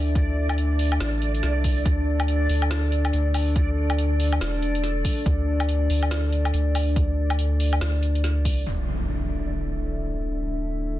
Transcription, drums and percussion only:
0.15 kick, closed hi-hat
0.49 closed hi-hat, low woodblock
0.58 closed hi-hat
0.79 open hi-hat
0.92 low woodblock
1.00 snare, closed hi-hat
1.22 closed hi-hat
1.34 closed hi-hat
1.43 snare, closed hi-hat
1.64 kick, open hi-hat
1.86 kick, closed hi-hat
2.20 closed hi-hat, low woodblock
2.28 closed hi-hat
2.50 open hi-hat
2.62 low woodblock
2.71 snare, closed hi-hat
2.92 closed hi-hat
3.05 closed hi-hat, low woodblock
3.13 closed hi-hat
3.34 open hi-hat, low woodblock
3.56 kick, closed hi-hat
3.90 closed hi-hat, low woodblock
3.99 closed hi-hat
4.20 open hi-hat
4.33 low woodblock
4.41 snare, closed hi-hat
4.62 closed hi-hat
4.75 closed hi-hat
4.84 snare, closed hi-hat
5.05 kick, open hi-hat
5.26 kick, closed hi-hat
5.60 closed hi-hat, low woodblock
5.69 closed hi-hat
5.90 open hi-hat
6.03 low woodblock
6.11 snare, closed hi-hat
6.32 closed hi-hat
6.45 closed hi-hat, low woodblock
6.54 closed hi-hat
6.75 open hi-hat, low woodblock
6.96 kick, closed hi-hat
7.30 closed hi-hat, low woodblock
7.39 closed hi-hat
7.60 open hi-hat
7.73 low woodblock
7.81 snare, closed hi-hat
8.03 closed hi-hat
8.15 closed hi-hat
8.24 snare, closed hi-hat
8.45 kick, open hi-hat

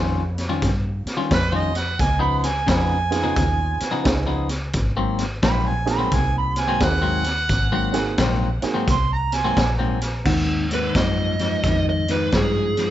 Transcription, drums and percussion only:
0.38 snare, closed hi-hat
0.62 kick, snare, closed hi-hat
1.07 snare, closed hi-hat
1.31 kick, snare, closed hi-hat
1.75 snare, closed hi-hat
1.99 kick, snare, closed hi-hat
2.44 snare, closed hi-hat
2.68 kick, snare, closed hi-hat
3.12 snare, closed hi-hat
3.36 kick, snare, closed hi-hat
3.80 snare, closed hi-hat
4.05 kick, snare, closed hi-hat
4.49 snare, closed hi-hat
4.73 kick, snare, closed hi-hat
5.19 snare, closed hi-hat
5.42 kick, snare, closed hi-hat
5.87 snare, closed hi-hat
6.12 kick, snare, closed hi-hat
6.56 snare, closed hi-hat
6.80 kick, snare, closed hi-hat
7.24 snare, closed hi-hat
7.49 kick, snare, closed hi-hat
7.94 snare, closed hi-hat
8.18 kick, snare, closed hi-hat
8.62 snare, closed hi-hat
8.88 kick, snare, closed hi-hat
9.32 snare, closed hi-hat
9.57 kick, snare, closed hi-hat
10.01 snare, closed hi-hat
10.26 kick, snare, crash
10.71 snare, closed hi-hat
10.95 kick, snare, closed hi-hat
11.39 snare, closed hi-hat
11.64 kick, snare, closed hi-hat
12.08 snare, closed hi-hat
12.32 kick, snare, closed hi-hat
12.77 snare, closed hi-hat

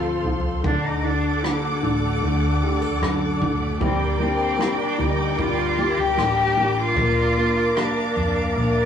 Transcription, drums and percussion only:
0.24 floor tom
0.64 kick, floor tom
1.44 cross-stick
1.83 floor tom
2.23 floor tom
2.83 floor tom
3.03 cross-stick
3.42 kick, floor tom
3.81 kick, floor tom
4.61 cross-stick
4.99 floor tom
5.39 kick, floor tom
5.98 floor tom
6.18 cross-stick
6.96 kick, floor tom
7.77 cross-stick
8.16 floor tom
8.57 floor tom

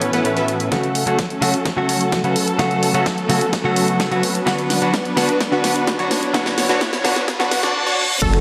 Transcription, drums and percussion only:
0.02 closed hi-hat
0.13 closed hi-hat
0.25 closed hi-hat
0.37 closed hi-hat
0.48 closed hi-hat
0.60 closed hi-hat
0.72 kick, snare, closed hi-hat
0.83 closed hi-hat
0.95 open hi-hat
1.07 closed hi-hat
1.19 kick, snare, closed hi-hat
1.30 closed hi-hat
1.42 open hi-hat
1.54 closed hi-hat
1.66 kick, snare, closed hi-hat
1.89 open hi-hat
2.01 closed hi-hat
2.12 kick, snare, closed hi-hat
2.24 closed hi-hat
2.36 open hi-hat
2.48 closed hi-hat
2.59 kick, snare, closed hi-hat
2.71 closed hi-hat
2.83 open hi-hat
2.94 closed hi-hat
3.06 kick, snare, closed hi-hat
3.18 closed hi-hat
3.30 open hi-hat
3.41 closed hi-hat
3.53 kick, snare, closed hi-hat
3.76 open hi-hat
3.88 closed hi-hat
4.00 kick, snare, closed hi-hat
4.12 closed hi-hat
4.23 open hi-hat
4.35 closed hi-hat
4.47 kick, snare, closed hi-hat
4.58 closed hi-hat
4.70 snare, open hi-hat
4.82 closed hi-hat
4.94 kick, snare, closed hi-hat
5.05 closed hi-hat
5.17 snare, open hi-hat
5.29 closed hi-hat
5.41 kick, snare, closed hi-hat
5.64 snare, open hi-hat
5.76 closed hi-hat
5.87 kick, snare, closed hi-hat
5.99 closed hi-hat
6.11 snare, open hi-hat
6.23 closed hi-hat
6.34 kick, snare, closed hi-hat
6.46 snare, closed hi-hat
6.58 snare, open hi-hat
6.69 snare, closed hi-hat
6.81 kick, snare, closed hi-hat
6.93 snare, closed hi-hat
7.05 snare, open hi-hat
7.16 snare, closed hi-hat
7.28 kick, snare, closed hi-hat
7.40 snare, closed hi-hat
7.51 snare, open hi-hat
7.63 snare, closed hi-hat
8.22 kick, closed hi-hat, ride, crash
8.34 finger snap, closed hi-hat

